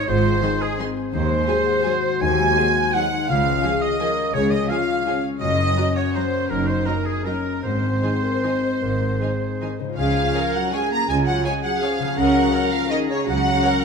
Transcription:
Already playing: G#3 D#4 G#4 C5 D#5
0.06 G#1 G#2 F4 C5
0.25 G#3
0.42 D#3 D#4 G#4 C5 C6
0.60 G#4 D#5
0.79 D#3 C4 G#4 C6
0.97 C5
1.12 D#2 D#3 D#4 C5
1.30 G#3
1.48 F#3 G#4 C5 G#5
1.66 F#5
1.84 F#3 F#4 G#4 G#5
2.03 C5
2.21 D#2 D#3 G#5
2.39 G#3
2.57 F#3 G#4 C5 G#5
2.76 F#5
2.93 F#3 D#4 G#4 F#5 G#5
3.12 C5
3.28 C#2 C#3 F4 F5
3.46 G#3
3.63 F3 G#4 C#5 G#5
3.81 D#5 F5
3.99 F3 G#4 A#4 G#5
4.17 C#5
4.33 C#2 C#3 G#4 C#5
4.50 G#3 D#5
4.69 F3 F4 G#4 C#5 F5 G#5
4.87 F5
5.06 F3 C#4 G#4 G#5
5.23 C#5
5.40 F#1 F#2 D#5
5.58 A#3
5.76 F#3 F#4 C#5 A#5
5.96 C#5 F#5
6.14 F#3 F#4 A#4 C5 A#5
6.33 C#5
6.49 F#1 F#2 D#4 A#4
6.67 A#3 C5
6.86 F#3 D#4 A#4 D#5 A#5
7.05 G#4 A#4
7.24 F#3 C#4 D#4 A#4 D#5 A#5
7.45 D#4
7.63 G#1 G#2 C4 C5
7.83 G#3
8.02 D#3 D#4 G#4 D#5 G#5
8.23 G#4 A#4
8.43 D#3 D#4 C5 D#5 G#5
8.63 D#4
8.82 G#1 G#2 A#4
9.01 G#3
9.21 D#3 D#4 G#4 D#5 G#5
9.41 G#4
9.61 D#3 D#4 D#5 G#5
9.80 C#3 D#4 C5
9.84 G#3
9.89 F4
9.94 C#2 C#4 C#5
9.98 C#3 F3 G#4 F5 G#5
10.34 G#4 A#4 C#5
10.53 F#3 F#5
10.72 G#3 C#4 G#4 C#5 G#5
10.91 A#3 A#5
11.08 C#2 C#3 G#3 C#4 F4 G#5
11.26 F#3 F#5
11.45 G#3 C#4 G#4 C#5 G#5
11.63 F#3 F#5
11.82 F3 C#4 G#4 C#5 F5 G#5
11.99 C#3
12.04 A#3
12.08 C#4
12.13 C#5 F#5
12.17 C#2 C#3 F#3 C#4 A#4 F#5 A#5
12.53 A#4 C#5
12.71 F3 F5
12.90 D#3 G#4 A#4 C#5 D#5
13.10 C#3 C#5
13.28 C#2 C#3 F#3 C#4 F#4 F#5 A#5
13.64 A#4 C#5

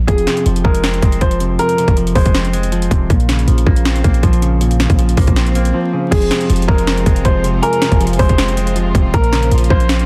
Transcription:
0.07 F1 F2 G#4, kick, closed hi-hat
0.18 closed hi-hat
0.27 C3, snare, closed hi-hat
0.37 closed hi-hat
0.46 F1 F3, closed hi-hat
0.56 closed hi-hat
0.64 F1 G#3 A#4, kick
0.74 closed hi-hat
0.84 C4, snare, closed hi-hat
0.94 closed hi-hat
1.02 F1 G#3, kick, closed hi-hat
1.12 closed hi-hat
1.21 F1 F3 C5, kick, closed hi-hat
1.31 closed hi-hat
1.40 C3, closed hi-hat
1.59 F2 A#4, closed hi-hat
1.69 closed hi-hat
1.78 C3, closed hi-hat
1.88 F1, kick, closed hi-hat
1.97 F3, closed hi-hat
2.07 closed hi-hat
2.15 F1 G#3 C5, kick, open hi-hat
2.25 F1, kick, closed hi-hat
2.35 C4, snare, closed hi-hat
2.45 closed hi-hat
2.53 G#3, closed hi-hat
2.63 closed hi-hat
2.72 F3, closed hi-hat
2.82 closed hi-hat
2.91 D#1 C3, kick, closed hi-hat
3.10 A#1 A#2, kick, closed hi-hat, swell
3.20 closed hi-hat
3.29 C#3, snare, closed hi-hat
3.39 closed hi-hat
3.48 A#1 F3, closed hi-hat
3.58 closed hi-hat
3.66 A#1 A#3, kick
3.76 closed hi-hat
3.85 C4, snare, closed hi-hat
3.96 closed hi-hat
4.04 A#1 A#3, kick, closed hi-hat
4.14 closed hi-hat
4.23 A#1 F3, kick, closed hi-hat
4.33 closed hi-hat
4.42 C#3, closed hi-hat
4.61 A#2, closed hi-hat
4.71 closed hi-hat
4.80 C#3, snare, closed hi-hat
4.90 A#1, kick, closed hi-hat
4.99 F3, closed hi-hat
5.09 closed hi-hat
5.17 A#1 A#3, kick, open hi-hat
5.27 A#1, kick, closed hi-hat
5.36 C4, snare, closed hi-hat
5.47 closed hi-hat
5.55 A#3, closed hi-hat
5.65 closed hi-hat
5.74 F3
5.93 C#3
6.11 F1 F2 C3 G#3 F4 G#4 C5, kick, closed hi-hat, crash
6.22 closed hi-hat
6.31 C3, snare, closed hi-hat
6.41 closed hi-hat
6.50 F1 F3, closed hi-hat
6.56 closed hi-hat
6.62 closed hi-hat
6.68 F1 G#3 A#4, kick
6.78 closed hi-hat
6.87 C4, snare, closed hi-hat
6.97 closed hi-hat
7.06 F1 G#3, kick, closed hi-hat
7.16 closed hi-hat
7.25 F1 F3 C5, kick, closed hi-hat
7.44 C3, closed hi-hat
7.62 F2 A#4 G#5, closed hi-hat
7.73 closed hi-hat
7.82 C3, snare, closed hi-hat
7.92 F1, kick, closed hi-hat
8.01 F3, closed hi-hat
8.07 closed hi-hat
8.13 closed hi-hat
8.19 F1 G#3 C5, kick, open hi-hat
8.29 F1, kick, closed hi-hat
8.38 C4, snare, closed hi-hat
8.48 closed hi-hat
8.57 G#3, closed hi-hat
8.67 closed hi-hat
8.76 F3, closed hi-hat
8.95 D#1 C3, kick, closed hi-hat
9.14 A#1 A#2 C#3 A#3 A#4, kick, closed hi-hat
9.24 closed hi-hat
9.33 C#3, snare, closed hi-hat
9.43 closed hi-hat
9.51 A#1 F3, closed hi-hat
9.58 closed hi-hat
9.64 closed hi-hat
9.70 A#1 A#3 C5, kick
9.80 closed hi-hat
9.89 C4, snare, closed hi-hat
9.99 closed hi-hat

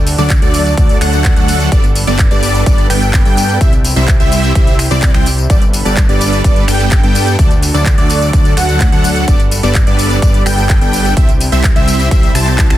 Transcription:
Already playing: D2 D3 D4 F#4 A4
0.07 open hi-hat, tambourine
0.18 D2 F#3 A3 D4 A4 D5, closed hi-hat, tambourine
0.30 kick, clap, closed hi-hat, tambourine
0.42 D2 F#3 A3 D4 A4 D5, closed hi-hat, tambourine
0.54 open hi-hat, tambourine
0.66 closed hi-hat, tambourine
0.77 D2 F#3 A3 D4 A4 D5, kick, closed hi-hat, tambourine
0.89 closed hi-hat, tambourine
1.01 D2 F#3 A3 D4 A4 F#5, finger snap, open hi-hat, tambourine
1.13 closed hi-hat, tambourine
1.25 kick, clap, closed hi-hat, tambourine
1.36 D2 F#3 A3 D4 A4 F#5, closed hi-hat, tambourine
1.48 open hi-hat, tambourine
1.60 closed hi-hat, tambourine
1.72 G1 G3 B3 D4 A4 B4 D5, kick, closed hi-hat, tambourine
1.84 closed hi-hat, tambourine
1.95 open hi-hat, tambourine
2.07 G1 G3 B3 D4 A4 D5, closed hi-hat, tambourine
2.19 kick, clap, closed hi-hat, tambourine
2.31 G1 G3 B3 D4 A4 D5, closed hi-hat, tambourine
2.43 open hi-hat, tambourine
2.55 closed hi-hat, tambourine
2.66 G3 B3 D4 A4 D5, kick, closed hi-hat, tambourine
2.78 closed hi-hat, tambourine
2.90 G1 G3 B3 D4 A4 G5, finger snap, open hi-hat, tambourine
3.02 closed hi-hat, tambourine
3.14 kick, clap, closed hi-hat, tambourine
3.25 G2 G3 B3 D4 A4 G5, closed hi-hat, tambourine
3.37 open hi-hat, tambourine
3.49 closed hi-hat, tambourine
3.61 C2 C3 G3 C4 E4 G4 C5 E5, kick, closed hi-hat, tambourine
3.73 closed hi-hat, tambourine
3.85 open hi-hat, tambourine
3.96 C2 G3 C4 E4 C5 E5, closed hi-hat, tambourine
4.08 kick, clap, closed hi-hat, tambourine
4.20 C2 G3 C4 E4 C5 E5, closed hi-hat, tambourine
4.32 open hi-hat, tambourine
4.44 closed hi-hat, tambourine
4.55 G3 C4 E4 C5 E5, kick, closed hi-hat, tambourine
4.67 closed hi-hat, tambourine
4.79 finger snap, open hi-hat, tambourine
4.91 C2 G3 C4 E4 C5 D5, closed hi-hat, tambourine
5.02 kick, clap, closed hi-hat, tambourine
5.14 C2 G3 C4 E4 C5 G5, finger snap, closed hi-hat, tambourine
5.26 open hi-hat, tambourine
5.38 closed hi-hat, tambourine
5.50 G1 G3 B3 D4 A4 B4 D5, kick, closed hi-hat, tambourine
5.62 closed hi-hat, tambourine
5.73 open hi-hat, tambourine
5.85 G1 G3 B3 D4 A4 D5, closed hi-hat, tambourine
5.97 kick, clap, closed hi-hat, tambourine
6.09 G1 G3 B3 D4 A4 D5, closed hi-hat, tambourine
6.21 open hi-hat, tambourine
6.33 closed hi-hat, tambourine
6.44 G3 B3 D4 A4 D5, kick, closed hi-hat, tambourine
6.56 closed hi-hat, tambourine
6.68 G1 G3 B3 D4 A4 G5, finger snap, open hi-hat, tambourine
6.80 closed hi-hat, tambourine
6.92 kick, clap, closed hi-hat, tambourine
7.03 G2 G3 B3 D4 A4 G5, closed hi-hat, tambourine
7.15 open hi-hat, tambourine
7.27 closed hi-hat, tambourine
7.39 D2 D3 F#3 A3 D4 F#4 A4 D5, kick, closed hi-hat, tambourine
7.51 closed hi-hat, tambourine
7.62 open hi-hat, tambourine
7.74 D2 F#3 A3 D4 A4 D5, closed hi-hat, tambourine
7.86 kick, clap, closed hi-hat, tambourine
7.98 D2 F#3 A3 D4 A4 D5, closed hi-hat, tambourine
8.10 open hi-hat, tambourine
8.22 closed hi-hat, tambourine
8.33 D2 F#3 A3 D4 A4 D5, kick, closed hi-hat, tambourine
8.45 closed hi-hat, tambourine
8.57 D2 F#3 A3 D4 A4 F#5, finger snap, open hi-hat, tambourine
8.69 closed hi-hat, tambourine
8.80 kick, clap, closed hi-hat, tambourine
8.92 D2 F#3 A3 D4 A4 F#5, closed hi-hat, tambourine
9.04 open hi-hat, tambourine
9.16 closed hi-hat, tambourine
9.28 G1 G3 B3 D4 A4 B4 D5, kick, closed hi-hat, tambourine
9.40 closed hi-hat, tambourine
9.51 open hi-hat, tambourine
9.63 G1 G3 B3 D4 A4 D5, closed hi-hat, tambourine
9.75 kick, clap, closed hi-hat, tambourine
9.87 G1 G3 B3 D4 A4 D5, closed hi-hat, tambourine
9.99 open hi-hat, tambourine
10.11 closed hi-hat, tambourine
10.22 G3 B3 D4 A4 D5, kick, closed hi-hat, tambourine
10.34 closed hi-hat, tambourine
10.46 G1 G3 B3 D4 A4 G5, finger snap, open hi-hat, tambourine
10.58 closed hi-hat, tambourine
10.70 kick, clap, closed hi-hat, tambourine
10.81 G1 G3 B3 D4 A4 G5, closed hi-hat, tambourine
10.93 open hi-hat, tambourine
11.05 closed hi-hat, tambourine
11.17 C2 C3 G3 C4 E4 G4 C5 E5, kick, closed hi-hat, tambourine
11.29 closed hi-hat, tambourine
11.40 open hi-hat, tambourine
11.52 C2 G3 C4 E4 C5 E5, closed hi-hat, tambourine
11.64 kick, clap, closed hi-hat, tambourine
11.76 C2 G3 C4 E4 C5 E5, closed hi-hat, tambourine
11.88 open hi-hat, tambourine
12.00 closed hi-hat, tambourine
12.11 G3 C4 E4 C5 E5, kick, closed hi-hat, tambourine
12.23 closed hi-hat, tambourine
12.35 C2 G3 C4 E4 C5 A5, finger snap, open hi-hat, tambourine
12.47 clap, closed hi-hat, tambourine
12.58 kick, clap, closed hi-hat, tambourine
12.70 C2 G3 C4 E4 C5 A5, finger snap, closed hi-hat, tambourine

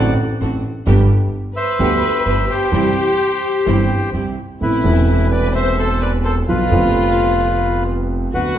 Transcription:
Already playing: A1 A2 D3 A3 C4 D4 F#4 D5 F#5
0.40 A1 A2 C4 D4 F#4
0.86 G1 G2 D3 G3 B3 D4 G4
1.56 B4 C5 E5
1.79 D2 D3 G3 B3 D4 G4
2.26 G1 G2 B3 D4 G4
2.49 G4 C5
2.72 C2 C3 E3 G3 C4 E4 G4
3.66 G1 G2 E3 G3 C4 E4 G4
4.13 C2 C3 C4 E4 G4
4.61 A1 A2 C3 A3 B3 E4 B4
4.82 E1 E2 C3 A3 B3
4.86 E4
5.32 B4 D5
5.54 C5 E5
5.78 A4 C5
6.01 B4 D5
6.24 A4 C5
6.47 B1 B2 D3 F3 B3 F4 B4
6.69 F1 F2 D3 F3 B3
6.74 F4
8.33 D2 D3 A3 B3 F#4 B4
8.54 D3

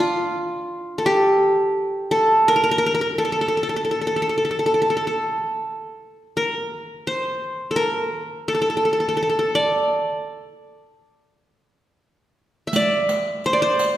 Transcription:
Already playing: D4
0.00 F4
0.98 A4
1.06 G4
2.11 A4
2.48 A#4
2.56 A#4
2.64 A#4
2.71 A#4
2.78 A#4
2.86 A#4
2.95 A#4
3.01 A#4
3.18 A4
3.25 A4
3.32 A4
3.41 A4
3.48 A4
3.57 A4
3.63 A4
3.69 A4
3.76 A4
3.85 A4
3.91 A4
4.01 A4
4.07 A4
4.16 A4
4.22 A4
4.29 A4
4.38 A4
4.45 A4
4.51 A4
4.59 A4
4.66 A4
4.74 A4
4.82 A4
4.90 A4
4.97 A4
5.07 A4
6.37 A#4
7.07 C5
7.71 A4
7.76 A#4
8.48 A4
8.55 A4
8.62 A4
8.70 A4
8.77 A4
8.85 A4
8.93 A4
9.00 A4
9.09 A4
9.17 A4
9.23 A4
9.30 A4
9.39 A4
9.55 D5
12.67 E5
12.73 D5, riq
13.09 riq
13.44 C5, riq
13.53 D5
13.62 C5
13.79 riq

